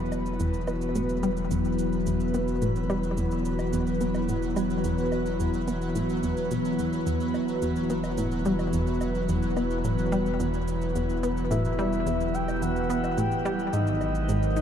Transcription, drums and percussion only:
0.12 cabasa, low woodblock
0.26 cabasa
0.40 cabasa
0.54 cabasa
0.67 cabasa, low woodblock
0.81 cabasa
0.95 cabasa
1.09 cabasa
1.23 cabasa
1.37 cabasa
1.51 cabasa
1.65 cabasa
1.79 cabasa
1.93 cabasa
2.06 cabasa
2.20 cabasa
2.34 cabasa
2.48 cabasa
2.62 cabasa
2.76 cabasa
2.90 cabasa, low woodblock
3.03 cabasa
3.17 cabasa
3.31 cabasa
3.45 cabasa
3.59 cabasa, low woodblock
3.73 cabasa
3.87 cabasa
4.01 cabasa
4.15 cabasa, low woodblock
4.29 cabasa
4.42 cabasa
4.56 cabasa, low woodblock
4.70 cabasa
4.84 cabasa
4.98 cabasa
5.12 cabasa, low woodblock
5.26 cabasa
5.40 cabasa
5.54 cabasa
5.68 cabasa
5.81 cabasa
5.95 cabasa
6.09 cabasa
6.23 cabasa
6.37 cabasa
6.51 cabasa
6.65 cabasa
6.79 cabasa
6.93 cabasa
7.07 cabasa
7.20 cabasa
7.34 cabasa, low woodblock
7.48 cabasa
7.62 cabasa
7.76 cabasa
7.90 cabasa
8.04 cabasa, low woodblock
8.18 cabasa
8.31 cabasa
8.45 cabasa
8.59 cabasa, low woodblock
8.73 cabasa
8.87 cabasa
9.01 cabasa, low woodblock
9.15 cabasa
9.29 cabasa
9.43 cabasa
9.57 cabasa, low woodblock
9.71 cabasa
9.84 cabasa
9.98 cabasa
10.12 cabasa
10.26 cabasa
10.40 cabasa
10.54 cabasa
10.68 cabasa
10.82 cabasa
10.96 cabasa
11.09 cabasa
11.23 cabasa
11.37 cabasa
11.51 cabasa
11.65 cabasa
11.79 cabasa, low woodblock
11.93 cabasa
12.07 cabasa
12.21 cabasa
12.34 cabasa
12.48 cabasa, low woodblock
12.62 cabasa
12.76 cabasa
12.90 cabasa
13.04 cabasa, low woodblock
13.18 cabasa
13.32 cabasa
13.46 cabasa, low woodblock
13.59 cabasa
13.73 cabasa
13.87 cabasa
14.01 cabasa, low woodblock
14.15 cabasa
14.29 cabasa
14.43 cabasa
14.56 cabasa

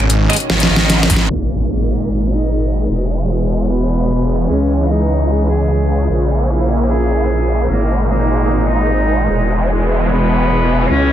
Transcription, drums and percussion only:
0.00 finger snap
0.10 closed hi-hat
0.30 finger snap, closed hi-hat
0.33 closed hi-hat
0.36 closed hi-hat
0.40 closed hi-hat
0.50 snare
0.60 snare, closed hi-hat
0.76 snare
0.90 snare, closed hi-hat
1.03 snare
1.10 kick, open hi-hat
1.16 snare

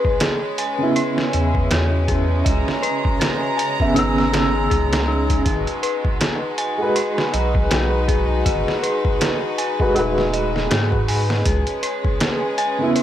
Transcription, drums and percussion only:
0.05 kick
0.20 snare, closed hi-hat
0.58 closed hi-hat
0.96 closed hi-hat
1.18 snare
1.33 closed hi-hat
1.55 kick
1.71 snare, closed hi-hat
2.08 kick, closed hi-hat
2.46 kick, closed hi-hat
2.68 snare
2.83 closed hi-hat
3.05 kick
3.21 snare, closed hi-hat
3.59 closed hi-hat
3.80 kick
3.96 closed hi-hat
4.18 snare
4.34 snare, closed hi-hat
4.71 kick, closed hi-hat
4.93 snare, closed hi-hat
5.30 kick, closed hi-hat
5.46 kick, closed hi-hat
5.67 closed hi-hat
5.83 closed hi-hat
6.05 kick
6.21 snare, closed hi-hat
6.58 closed hi-hat
6.96 closed hi-hat
7.18 snare
7.34 closed hi-hat
7.55 kick
7.71 snare, closed hi-hat
8.08 kick, closed hi-hat
8.46 kick, closed hi-hat
8.68 snare
8.84 closed hi-hat
9.05 kick
9.21 snare, closed hi-hat
9.58 closed hi-hat
9.80 kick
9.96 closed hi-hat
10.18 snare
10.34 closed hi-hat
10.56 snare
10.71 snare, closed hi-hat
10.92 kick
11.08 open hi-hat
11.30 snare
11.45 kick, closed hi-hat
11.67 closed hi-hat
11.83 closed hi-hat
12.05 kick
12.20 snare, closed hi-hat
12.58 closed hi-hat
12.96 closed hi-hat

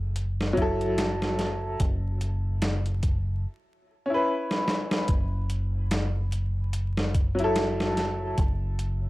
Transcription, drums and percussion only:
0.16 closed hi-hat
0.41 snare
0.57 kick, closed hi-hat
0.81 closed hi-hat
0.98 snare, closed hi-hat
1.22 snare
1.39 snare, closed hi-hat
1.80 kick, closed hi-hat
2.21 closed hi-hat
2.62 snare, closed hi-hat
2.86 closed hi-hat
3.03 kick, closed hi-hat
4.51 snare
4.68 snare
4.91 snare
5.08 kick, closed hi-hat
5.50 closed hi-hat
5.91 snare, closed hi-hat
6.32 closed hi-hat
6.73 closed hi-hat
6.97 snare
7.14 kick, closed hi-hat
7.39 closed hi-hat
7.56 snare, closed hi-hat
7.80 snare
7.97 snare, closed hi-hat
8.38 kick, closed hi-hat
8.79 closed hi-hat

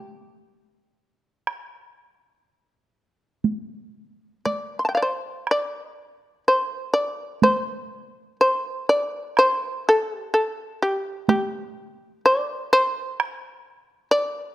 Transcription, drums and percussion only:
1.47 taiko rim
3.44 taiko high
4.46 taiko high
5.47 taiko rim
7.42 taiko high
9.37 taiko rim
11.28 taiko high
13.20 taiko rim

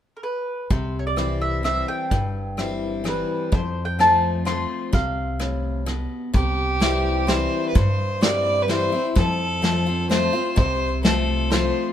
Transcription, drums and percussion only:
0.71 kick
1.17 cross-stick
1.64 cross-stick
2.11 kick
2.58 cross-stick
3.05 cross-stick
3.52 kick
3.99 cross-stick
4.46 cross-stick
4.93 kick
5.40 cross-stick
5.87 cross-stick
6.34 kick, closed hi-hat
6.81 snare, closed hi-hat
7.28 snare, closed hi-hat
7.75 kick, closed hi-hat
8.22 snare, closed hi-hat
8.69 snare, closed hi-hat
9.16 kick, closed hi-hat
9.64 snare, closed hi-hat
10.11 snare, closed hi-hat
10.57 kick, closed hi-hat
11.05 snare, closed hi-hat
11.52 snare, closed hi-hat

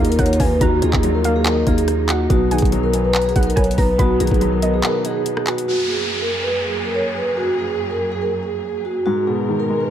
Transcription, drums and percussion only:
0.05 closed hi-hat
0.12 closed hi-hat
0.19 kick, cross-stick, closed hi-hat
0.26 closed hi-hat
0.33 closed hi-hat
0.40 kick, open hi-hat
0.61 kick, closed hi-hat
0.82 closed hi-hat
0.93 kick, clap
1.03 closed hi-hat
1.24 closed hi-hat
1.45 clap, closed hi-hat
1.67 kick, closed hi-hat
1.78 closed hi-hat
1.88 cross-stick, closed hi-hat
2.09 clap, closed hi-hat
2.30 kick, closed hi-hat
2.51 closed hi-hat
2.58 closed hi-hat
2.62 kick, closed hi-hat
2.72 closed hi-hat
2.93 closed hi-hat
3.15 clap, closed hi-hat
3.22 closed hi-hat
3.29 closed hi-hat
3.36 kick, closed hi-hat
3.43 closed hi-hat
3.50 closed hi-hat
3.57 kick, cross-stick, closed hi-hat
3.64 closed hi-hat
3.71 closed hi-hat
3.78 kick, open hi-hat
3.99 kick, closed hi-hat
4.20 closed hi-hat
4.27 closed hi-hat
4.31 kick, closed hi-hat
4.41 closed hi-hat
4.62 closed hi-hat
4.83 clap, closed hi-hat
5.05 closed hi-hat
5.26 closed hi-hat
5.37 cross-stick
5.47 clap, closed hi-hat
5.58 closed hi-hat

